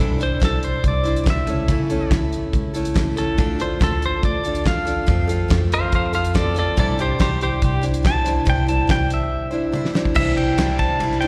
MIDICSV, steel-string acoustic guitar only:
0, 0, Header, 1, 2, 480
1, 0, Start_track
1, 0, Tempo, 423430
1, 1919, Time_signature, 4, 2, 24, 8
1, 12781, End_track
2, 0, Start_track
2, 0, Title_t, "Steel-string acoustic guitar"
2, 0, Program_c, 0, 25
2, 0, Note_on_c, 0, 48, 75
2, 0, Note_on_c, 0, 52, 73
2, 0, Note_on_c, 0, 55, 78
2, 0, Note_on_c, 0, 62, 75
2, 0, Note_on_c, 0, 64, 77
2, 2, Note_on_c, 0, 72, 81
2, 194, Note_off_c, 0, 72, 0
2, 208, Note_on_c, 0, 72, 49
2, 210, Note_off_c, 0, 64, 0
2, 216, Note_off_c, 0, 62, 0
2, 223, Note_on_c, 0, 64, 45
2, 226, Note_off_c, 0, 48, 0
2, 228, Note_off_c, 0, 52, 0
2, 230, Note_on_c, 0, 62, 49
2, 232, Note_off_c, 0, 55, 0
2, 247, Note_on_c, 0, 55, 41
2, 438, Note_off_c, 0, 55, 0
2, 451, Note_off_c, 0, 62, 0
2, 452, Note_on_c, 0, 55, 58
2, 462, Note_off_c, 0, 72, 0
2, 464, Note_off_c, 0, 64, 0
2, 464, Note_on_c, 0, 62, 55
2, 478, Note_on_c, 0, 64, 54
2, 487, Note_on_c, 0, 72, 56
2, 1160, Note_off_c, 0, 72, 0
2, 1172, Note_off_c, 0, 64, 0
2, 1173, Note_on_c, 0, 72, 50
2, 1183, Note_off_c, 0, 62, 0
2, 1185, Note_off_c, 0, 55, 0
2, 1186, Note_on_c, 0, 64, 45
2, 1197, Note_on_c, 0, 62, 44
2, 1211, Note_on_c, 0, 55, 40
2, 1387, Note_off_c, 0, 55, 0
2, 1401, Note_on_c, 0, 55, 55
2, 1411, Note_off_c, 0, 62, 0
2, 1422, Note_off_c, 0, 64, 0
2, 1425, Note_on_c, 0, 62, 63
2, 1426, Note_off_c, 0, 72, 0
2, 1436, Note_on_c, 0, 64, 70
2, 1444, Note_on_c, 0, 72, 59
2, 1660, Note_off_c, 0, 55, 0
2, 1662, Note_off_c, 0, 72, 0
2, 1666, Note_on_c, 0, 69, 50
2, 1667, Note_off_c, 0, 64, 0
2, 1672, Note_off_c, 0, 62, 0
2, 1681, Note_on_c, 0, 64, 47
2, 1692, Note_on_c, 0, 61, 48
2, 1698, Note_on_c, 0, 57, 43
2, 1904, Note_off_c, 0, 57, 0
2, 1906, Note_on_c, 0, 49, 75
2, 1908, Note_on_c, 0, 52, 76
2, 1910, Note_off_c, 0, 61, 0
2, 1912, Note_off_c, 0, 64, 0
2, 1913, Note_off_c, 0, 69, 0
2, 1918, Note_on_c, 0, 57, 66
2, 1924, Note_on_c, 0, 61, 77
2, 1926, Note_on_c, 0, 64, 75
2, 1930, Note_on_c, 0, 69, 84
2, 2133, Note_off_c, 0, 69, 0
2, 2144, Note_off_c, 0, 64, 0
2, 2147, Note_on_c, 0, 69, 62
2, 2153, Note_off_c, 0, 49, 0
2, 2153, Note_off_c, 0, 61, 0
2, 2154, Note_off_c, 0, 52, 0
2, 2157, Note_on_c, 0, 64, 55
2, 2159, Note_off_c, 0, 57, 0
2, 2167, Note_on_c, 0, 61, 56
2, 2178, Note_on_c, 0, 57, 52
2, 2377, Note_off_c, 0, 57, 0
2, 2388, Note_off_c, 0, 61, 0
2, 2390, Note_on_c, 0, 57, 65
2, 2393, Note_off_c, 0, 69, 0
2, 2399, Note_off_c, 0, 64, 0
2, 2402, Note_on_c, 0, 61, 62
2, 2413, Note_on_c, 0, 64, 66
2, 2419, Note_on_c, 0, 69, 60
2, 3097, Note_off_c, 0, 69, 0
2, 3099, Note_off_c, 0, 64, 0
2, 3102, Note_on_c, 0, 69, 52
2, 3113, Note_on_c, 0, 64, 53
2, 3114, Note_off_c, 0, 61, 0
2, 3127, Note_off_c, 0, 57, 0
2, 3128, Note_on_c, 0, 61, 47
2, 3132, Note_on_c, 0, 57, 44
2, 3321, Note_off_c, 0, 57, 0
2, 3335, Note_on_c, 0, 57, 63
2, 3338, Note_off_c, 0, 61, 0
2, 3351, Note_off_c, 0, 69, 0
2, 3352, Note_on_c, 0, 61, 67
2, 3354, Note_off_c, 0, 64, 0
2, 3367, Note_on_c, 0, 64, 73
2, 3375, Note_on_c, 0, 69, 70
2, 3567, Note_off_c, 0, 69, 0
2, 3581, Note_on_c, 0, 69, 50
2, 3586, Note_off_c, 0, 64, 0
2, 3588, Note_off_c, 0, 57, 0
2, 3596, Note_off_c, 0, 61, 0
2, 3600, Note_on_c, 0, 64, 47
2, 3609, Note_on_c, 0, 61, 43
2, 3625, Note_on_c, 0, 57, 44
2, 3817, Note_off_c, 0, 57, 0
2, 3827, Note_on_c, 0, 50, 75
2, 3830, Note_off_c, 0, 61, 0
2, 3830, Note_on_c, 0, 57, 78
2, 3831, Note_off_c, 0, 69, 0
2, 3834, Note_on_c, 0, 62, 76
2, 3838, Note_off_c, 0, 64, 0
2, 3843, Note_on_c, 0, 65, 83
2, 3850, Note_on_c, 0, 69, 84
2, 4053, Note_off_c, 0, 69, 0
2, 4066, Note_on_c, 0, 69, 54
2, 4071, Note_off_c, 0, 65, 0
2, 4074, Note_off_c, 0, 50, 0
2, 4076, Note_off_c, 0, 57, 0
2, 4078, Note_off_c, 0, 62, 0
2, 4085, Note_on_c, 0, 65, 45
2, 4103, Note_on_c, 0, 62, 45
2, 4297, Note_off_c, 0, 62, 0
2, 4301, Note_on_c, 0, 57, 51
2, 4309, Note_off_c, 0, 65, 0
2, 4311, Note_on_c, 0, 62, 60
2, 4314, Note_off_c, 0, 69, 0
2, 4323, Note_on_c, 0, 65, 60
2, 4331, Note_on_c, 0, 69, 62
2, 5014, Note_off_c, 0, 69, 0
2, 5027, Note_on_c, 0, 69, 49
2, 5030, Note_off_c, 0, 65, 0
2, 5031, Note_off_c, 0, 57, 0
2, 5036, Note_off_c, 0, 62, 0
2, 5043, Note_on_c, 0, 65, 40
2, 5065, Note_on_c, 0, 62, 43
2, 5258, Note_on_c, 0, 57, 57
2, 5260, Note_off_c, 0, 62, 0
2, 5271, Note_off_c, 0, 65, 0
2, 5274, Note_on_c, 0, 62, 57
2, 5275, Note_off_c, 0, 69, 0
2, 5284, Note_on_c, 0, 65, 59
2, 5295, Note_on_c, 0, 69, 65
2, 5485, Note_off_c, 0, 69, 0
2, 5498, Note_on_c, 0, 69, 50
2, 5504, Note_off_c, 0, 65, 0
2, 5510, Note_off_c, 0, 57, 0
2, 5517, Note_on_c, 0, 65, 43
2, 5518, Note_off_c, 0, 62, 0
2, 5530, Note_on_c, 0, 62, 44
2, 5740, Note_on_c, 0, 53, 75
2, 5742, Note_off_c, 0, 65, 0
2, 5746, Note_on_c, 0, 57, 78
2, 5748, Note_off_c, 0, 62, 0
2, 5750, Note_off_c, 0, 69, 0
2, 5753, Note_on_c, 0, 60, 83
2, 5756, Note_on_c, 0, 65, 75
2, 5766, Note_on_c, 0, 69, 86
2, 5965, Note_off_c, 0, 69, 0
2, 5978, Note_on_c, 0, 69, 59
2, 5988, Note_off_c, 0, 65, 0
2, 5991, Note_off_c, 0, 53, 0
2, 5994, Note_off_c, 0, 57, 0
2, 5997, Note_off_c, 0, 60, 0
2, 6002, Note_on_c, 0, 65, 57
2, 6019, Note_on_c, 0, 60, 51
2, 6215, Note_on_c, 0, 57, 62
2, 6216, Note_off_c, 0, 60, 0
2, 6229, Note_off_c, 0, 65, 0
2, 6229, Note_on_c, 0, 60, 69
2, 6230, Note_off_c, 0, 69, 0
2, 6242, Note_on_c, 0, 65, 67
2, 6251, Note_on_c, 0, 69, 71
2, 6932, Note_off_c, 0, 69, 0
2, 6946, Note_on_c, 0, 69, 53
2, 6949, Note_off_c, 0, 57, 0
2, 6957, Note_off_c, 0, 65, 0
2, 6971, Note_on_c, 0, 65, 49
2, 6982, Note_off_c, 0, 60, 0
2, 6987, Note_on_c, 0, 60, 42
2, 7184, Note_off_c, 0, 60, 0
2, 7185, Note_on_c, 0, 57, 61
2, 7192, Note_off_c, 0, 65, 0
2, 7194, Note_off_c, 0, 69, 0
2, 7197, Note_on_c, 0, 60, 59
2, 7205, Note_on_c, 0, 65, 54
2, 7219, Note_on_c, 0, 69, 64
2, 7404, Note_off_c, 0, 69, 0
2, 7418, Note_on_c, 0, 69, 58
2, 7427, Note_off_c, 0, 65, 0
2, 7434, Note_off_c, 0, 57, 0
2, 7440, Note_off_c, 0, 60, 0
2, 7440, Note_on_c, 0, 65, 48
2, 7451, Note_on_c, 0, 60, 46
2, 7667, Note_on_c, 0, 48, 66
2, 7670, Note_off_c, 0, 69, 0
2, 7673, Note_on_c, 0, 52, 86
2, 7679, Note_off_c, 0, 60, 0
2, 7679, Note_on_c, 0, 55, 81
2, 7681, Note_off_c, 0, 65, 0
2, 7684, Note_on_c, 0, 62, 86
2, 7685, Note_on_c, 0, 64, 88
2, 7690, Note_on_c, 0, 72, 86
2, 7892, Note_off_c, 0, 72, 0
2, 7906, Note_on_c, 0, 72, 53
2, 7910, Note_off_c, 0, 64, 0
2, 7914, Note_off_c, 0, 48, 0
2, 7918, Note_off_c, 0, 52, 0
2, 7920, Note_off_c, 0, 62, 0
2, 7921, Note_off_c, 0, 55, 0
2, 7923, Note_on_c, 0, 64, 54
2, 7933, Note_on_c, 0, 62, 47
2, 7945, Note_on_c, 0, 55, 44
2, 8132, Note_off_c, 0, 55, 0
2, 8142, Note_off_c, 0, 62, 0
2, 8146, Note_on_c, 0, 55, 53
2, 8154, Note_off_c, 0, 72, 0
2, 8156, Note_off_c, 0, 64, 0
2, 8156, Note_on_c, 0, 62, 58
2, 8170, Note_on_c, 0, 64, 63
2, 8179, Note_on_c, 0, 72, 63
2, 8853, Note_off_c, 0, 72, 0
2, 8858, Note_on_c, 0, 72, 54
2, 8864, Note_off_c, 0, 64, 0
2, 8868, Note_on_c, 0, 64, 45
2, 8874, Note_off_c, 0, 62, 0
2, 8878, Note_on_c, 0, 62, 46
2, 8885, Note_off_c, 0, 55, 0
2, 8889, Note_on_c, 0, 55, 42
2, 9087, Note_off_c, 0, 55, 0
2, 9101, Note_on_c, 0, 55, 55
2, 9104, Note_off_c, 0, 62, 0
2, 9110, Note_off_c, 0, 72, 0
2, 9115, Note_off_c, 0, 64, 0
2, 9117, Note_on_c, 0, 62, 58
2, 9126, Note_on_c, 0, 64, 68
2, 9142, Note_on_c, 0, 72, 64
2, 9333, Note_off_c, 0, 72, 0
2, 9347, Note_on_c, 0, 72, 51
2, 9350, Note_off_c, 0, 64, 0
2, 9351, Note_off_c, 0, 55, 0
2, 9359, Note_off_c, 0, 62, 0
2, 9364, Note_on_c, 0, 64, 51
2, 9371, Note_on_c, 0, 62, 48
2, 9380, Note_on_c, 0, 55, 49
2, 9577, Note_off_c, 0, 55, 0
2, 9581, Note_on_c, 0, 48, 73
2, 9583, Note_off_c, 0, 62, 0
2, 9586, Note_on_c, 0, 52, 79
2, 9587, Note_off_c, 0, 64, 0
2, 9591, Note_on_c, 0, 55, 76
2, 9594, Note_off_c, 0, 72, 0
2, 9597, Note_on_c, 0, 62, 73
2, 9600, Note_on_c, 0, 64, 82
2, 9611, Note_on_c, 0, 72, 82
2, 9809, Note_off_c, 0, 72, 0
2, 9823, Note_on_c, 0, 72, 51
2, 9829, Note_off_c, 0, 64, 0
2, 9831, Note_off_c, 0, 48, 0
2, 9833, Note_off_c, 0, 52, 0
2, 9836, Note_off_c, 0, 55, 0
2, 9839, Note_off_c, 0, 62, 0
2, 9842, Note_on_c, 0, 64, 51
2, 9853, Note_on_c, 0, 62, 44
2, 9865, Note_on_c, 0, 55, 51
2, 10043, Note_off_c, 0, 55, 0
2, 10057, Note_on_c, 0, 55, 62
2, 10063, Note_off_c, 0, 62, 0
2, 10070, Note_off_c, 0, 64, 0
2, 10071, Note_off_c, 0, 72, 0
2, 10076, Note_on_c, 0, 62, 60
2, 10083, Note_on_c, 0, 64, 60
2, 10095, Note_on_c, 0, 72, 65
2, 10763, Note_off_c, 0, 72, 0
2, 10777, Note_on_c, 0, 72, 58
2, 10781, Note_off_c, 0, 64, 0
2, 10787, Note_off_c, 0, 55, 0
2, 10792, Note_off_c, 0, 62, 0
2, 10794, Note_on_c, 0, 64, 53
2, 10805, Note_on_c, 0, 62, 48
2, 10812, Note_on_c, 0, 55, 43
2, 11009, Note_off_c, 0, 55, 0
2, 11022, Note_on_c, 0, 55, 57
2, 11023, Note_off_c, 0, 62, 0
2, 11027, Note_off_c, 0, 64, 0
2, 11027, Note_off_c, 0, 72, 0
2, 11036, Note_on_c, 0, 62, 70
2, 11041, Note_on_c, 0, 64, 73
2, 11056, Note_on_c, 0, 72, 77
2, 11250, Note_off_c, 0, 72, 0
2, 11259, Note_off_c, 0, 64, 0
2, 11263, Note_on_c, 0, 72, 59
2, 11269, Note_off_c, 0, 55, 0
2, 11272, Note_off_c, 0, 62, 0
2, 11273, Note_on_c, 0, 64, 58
2, 11286, Note_on_c, 0, 62, 56
2, 11293, Note_on_c, 0, 55, 46
2, 11494, Note_off_c, 0, 55, 0
2, 11499, Note_on_c, 0, 48, 73
2, 11503, Note_off_c, 0, 62, 0
2, 11507, Note_on_c, 0, 52, 79
2, 11508, Note_on_c, 0, 55, 81
2, 11509, Note_off_c, 0, 72, 0
2, 11511, Note_off_c, 0, 64, 0
2, 11516, Note_on_c, 0, 62, 87
2, 11524, Note_on_c, 0, 64, 90
2, 11527, Note_on_c, 0, 72, 96
2, 11980, Note_off_c, 0, 48, 0
2, 11985, Note_off_c, 0, 52, 0
2, 11987, Note_off_c, 0, 55, 0
2, 11991, Note_off_c, 0, 62, 0
2, 11993, Note_off_c, 0, 64, 0
2, 11993, Note_on_c, 0, 48, 74
2, 11999, Note_on_c, 0, 52, 78
2, 12001, Note_on_c, 0, 55, 82
2, 12004, Note_on_c, 0, 62, 84
2, 12007, Note_on_c, 0, 64, 74
2, 12014, Note_off_c, 0, 72, 0
2, 12019, Note_on_c, 0, 72, 80
2, 12455, Note_off_c, 0, 55, 0
2, 12468, Note_on_c, 0, 55, 61
2, 12469, Note_off_c, 0, 62, 0
2, 12471, Note_off_c, 0, 48, 0
2, 12474, Note_off_c, 0, 52, 0
2, 12478, Note_off_c, 0, 64, 0
2, 12483, Note_on_c, 0, 62, 62
2, 12484, Note_off_c, 0, 72, 0
2, 12492, Note_on_c, 0, 64, 67
2, 12507, Note_on_c, 0, 72, 71
2, 12689, Note_off_c, 0, 72, 0
2, 12703, Note_on_c, 0, 72, 52
2, 12709, Note_off_c, 0, 55, 0
2, 12712, Note_off_c, 0, 64, 0
2, 12716, Note_off_c, 0, 62, 0
2, 12725, Note_on_c, 0, 64, 52
2, 12734, Note_on_c, 0, 62, 53
2, 12742, Note_on_c, 0, 55, 42
2, 12781, Note_off_c, 0, 55, 0
2, 12781, Note_off_c, 0, 62, 0
2, 12781, Note_off_c, 0, 64, 0
2, 12781, Note_off_c, 0, 72, 0
2, 12781, End_track
0, 0, End_of_file